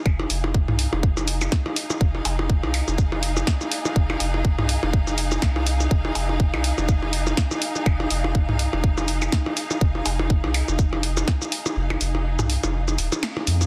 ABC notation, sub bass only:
X:1
M:4/4
L:1/16
Q:"Swing 16ths" 1/4=123
K:Fm
V:1 name="Sub bass" clef=bass
F,,,2 F,,,3 C,,2 F,,,4- F,,, z4 | F,,,2 F,,,3 C,,2 F,,,4- F,,, z4 | F,,,2 F,,,3 C,,2 F,,,4- F,,, C,,4 | F,,,2 F,,,3 C,,2 F,,,4- F,,, z4 |
F,,,2 F,,,3 C,,2 F,,,4- F,,, z4 | F,,,2 F,,,3 C,,2 F,,,4- F,,, z4 | F,,,2 F,,,3 C,,2 F,,,3 E,,, z3 F,,2 |]